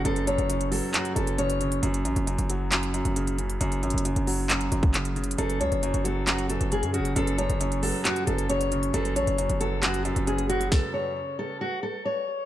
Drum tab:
HH |x--x--x--x--x--x--o-----x--x--x--x--x--x--x--x--|x--x--x--x--x--x--x-----x--x--x--x--x--x--x--x--|x--x--x-x-x-x--x--o-----x--x--x--x--x--x--x-x-x-|x--x--x--x--x--x--x-----x--x--x--x--x--x--x--x--|
CP |------------------------x-----------------------|------------------------x-----------------------|------------------------x-----------x-----------|------------------------x-----------------------|
SD |------------------------------------------------|------------------------------------------------|------------------------------------------------|------------------------------------------------|
BD |------------------------------------------------|------------------------------------------------|---------------------------------o--------------|------------------------------------------------|

HH |x--x--x--x--x--x--o-----x--x--x--x--x--x--x--x--|x--x--x--x--x--x--x-----x--x--x--x--x--x--x--x--|------------------------------------------------|
CP |------------------------x-----------------------|------------------------x-----------------------|------------------------------------------------|
SD |------------------------------------------------|------------------------------------------------|o-----------------------------------------------|
BD |------------------------------------------------|------------------------------------------------|o-----------------------------------------------|